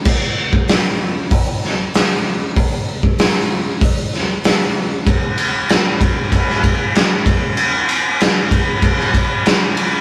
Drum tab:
CC |x---------------|----------------|----------------|----------------|
RD |----------------|----------------|x-x-x-x-x-x-x-x-|x-x-x-x-x-x-x-x-|
HH |----o---o---o---|o---o---o---o---|----------------|----------------|
SD |----o-----o-o---|----o-----o-o---|----o----o--o---|----o----o--o---|
BD |o--o----o-------|o--o----o-------|o-----o-o-o---o-|------o-o-o-----|